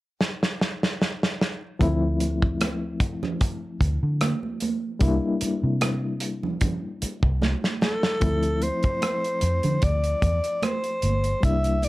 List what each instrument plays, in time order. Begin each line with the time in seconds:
0.21 snare
0.43 snare
0.61 snare
0.83 snare
1.02 snare
1.23 snare
1.41 snare
1.79 fingered electric bass D2, reed electric piano F3 A3 C4 E4, kick, closed hi-hat, muted conga
2.20 closed hi-hat, muted conga
2.42 kick
2.61 cross-stick, closed hi-hat, high conga
3.00 kick, closed hi-hat
3.23 cross-stick, low conga
3.41 kick, closed hi-hat
3.81 fingered electric bass D2, kick, closed hi-hat
4.03 fingered electric bass D3
4.21 cross-stick, closed hi-hat, high conga
4.43 high conga
4.60 closed hi-hat, high conga
4.99 fingered electric bass C2, reed electric piano G3 A#3 D4 E4, kick, closed hi-hat, muted conga
5.41 muted fingered electric bass stroke, closed hi-hat, muted conga
5.63 fingered electric bass C3
5.81 cross-stick, closed hi-hat, high conga
6.20 closed hi-hat
6.43 low conga
6.61 kick, closed hi-hat, low conga
7.02 muted fingered electric bass stroke, closed hi-hat, muted conga
7.23 fingered electric bass C2, kick
7.42 snare, high conga
7.64 snare, high conga
7.81 alto saxophone A4, snare, high conga
8.03 snare
8.20 fingered electric bass D2, reed electric piano F3 A3 C4 E4, kick, closed hi-hat, muted conga
8.43 closed hi-hat
8.61 alto saxophone C5, closed hi-hat, muted conga
8.83 muted fingered electric bass stroke, kick, closed hi-hat
9.02 cross-stick, closed hi-hat, high conga
9.24 closed hi-hat
9.41 fingered electric bass F2, closed hi-hat
9.63 fingered electric bass D3, closed hi-hat, low conga
9.82 fingered electric bass D2, alto saxophone D5, kick, closed hi-hat
10.04 closed hi-hat
10.22 fingered electric bass E2, kick, closed hi-hat, muted conga
10.44 closed hi-hat
10.62 alto saxophone C5, cross-stick, closed hi-hat, high conga
10.84 closed hi-hat
11.02 fingered electric bass G1, closed hi-hat, high conga
11.24 closed hi-hat
11.40 fingered electric bass C2, reed electric piano G3 A#3 D4 E4, kick, closed hi-hat, muted conga
11.45 alto saxophone E5
11.64 closed hi-hat
11.82 alto saxophone D5, closed hi-hat, muted conga